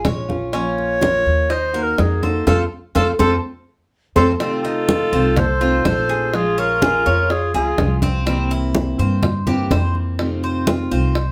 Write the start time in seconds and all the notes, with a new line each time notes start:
0.05 A#1 G#3 C#4 F4 C#5, high bongo, low bongo, high conga
0.28 C#4 F4, high conga
0.52 F3 A#3 C#4 F4 C#5, high bongo, high conga
0.78 high conga
1.01 F3 A#3 C#4 F4 A#4, high bongo, high conga
1.26 D#2, high conga
1.49 D#4 C5, muted steel-string acoustic guitar stroke, high bongo, high conga
1.74 A#3 D#4 F#4 A#4, high conga
1.83 A#4
1.98 F2 D#3 A#3 D#4 F#4 G#4, high bongo, low bongo, high conga
2.22 A#3 D#4 F#4 A4 C5, high conga
2.47 F2 A3 C4 F4 A4 C5, low bongo, high conga
2.95 F2 A3 C4 F4 A4 C5, low bongo, high conga
3.19 F2 A3 C4 F4 A4 C5, low bongo, high conga
4.16 F2 A3 C4 F4 A4 C5, low bongo, high conga
4.40 C3 D#3 A3 C4 F4 A4, high bongo, high conga
4.65 D#4, high conga
4.89 high bongo, high conga
5.12 C2 D#3 A3 C4 F4 C5, high conga
5.37 A4 C5, muted steel-string acoustic guitar stroke, high bongo, high conga, low conga
5.61 D#3 A3 C4 F4, high conga
5.85 A#1 D#3 A3 C4 F4 A4 C5, high bongo, low bongo, high conga
6.09 G#4, high conga
6.33 F3 G#3 C#4 F4 G#4, high bongo, high conga
6.58 F4 A#4 C#5, high conga
6.82 G#4, high bongo, high conga
7.05 F2 G#3 C#4 F4 C#5, high bongo, high conga
7.30 F4 G#4, muted steel-string acoustic guitar stroke, high bongo, high conga
7.54 C#2 G#3 C#4 F4 G#4, high bongo, high conga
7.78 C2 F3 G#3 C#4 F4, high bongo, low bongo, high conga
8.02 C4, high bongo, high conga
8.26 C3 E3 A#3 C4 E4, high bongo, high conga
8.50 E4, high conga
8.75 high bongo, high conga
8.98 G2 E3 A#3 C4 E4 C5, high conga
9.23 muted steel-string acoustic guitar stroke, high bongo, high conga, low conga
9.47 E3 A#3 C4 E4 G4, high conga, low conga
9.71 F2 E3 A#3 C4 E4 C5, high bongo, low bongo, high conga
9.95 high conga
10.19 C3 D#3 A3 C4 F4, high bongo, high conga
10.43 C5, high conga
10.67 F4, high bongo, high conga
10.91 C2 D#3 A3 C4 F4 C5, high bongo, high conga
11.15 muted steel-string acoustic guitar stroke, high bongo, high conga